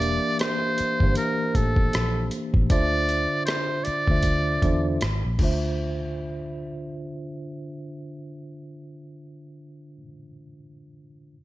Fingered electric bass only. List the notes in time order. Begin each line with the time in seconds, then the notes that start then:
Already playing: E1
0.80 muted fingered electric bass stroke
1.01 G1
1.56 A1
1.95 A#1
2.55 A1
2.71 D2
3.87 muted fingered electric bass stroke
4.09 D2
4.63 E2
5.02 G#1
5.25 A#1
5.40 D2